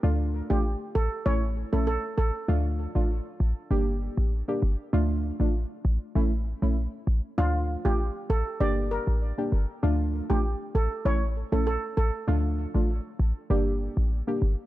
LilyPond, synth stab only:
\new Staff \with { instrumentName = "Synth stab" } { \time 4/4 \key d \minor \tempo 4 = 98 <a d' f'>8. <a d' f'>16 r4 <a cis' e'>16 r8 <a cis' e'>16 r4 | <a d' f'>8. <a d' f'>16 r4 <bes d' g'>4~ <bes d' g'>16 <bes d' g'>16 r8 | <a d' f'>8. <a d' f'>16 r4 <a cis' e'>16 r8 <a cis' e'>16 r4 | <a d' f'>8. <a d' f'>16 r4 <bes d' g'>4~ <bes d' g'>16 <bes d' g'>16 r8 |
<a d' f'>8. <a d' f'>16 r4 <a cis' e'>16 r8 <a cis' e'>16 r4 | <a d' f'>8. <a d' f'>16 r4 <bes d' g'>4~ <bes d' g'>16 <bes d' g'>16 r8 | }